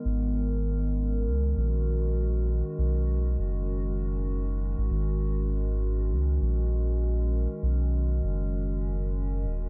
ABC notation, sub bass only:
X:1
M:4/4
L:1/16
Q:"Swing 16ths" 1/4=99
K:G#m
V:1 name="Sub bass" clef=bass
G,,,8 C,,2 A,,,6- | A,,, z B,,,4 F,,,8- F,,, G,,, | G,,,8 C,,2 A,,,6- | A,,, z B,,,4 F,,,8 D,,,2 |]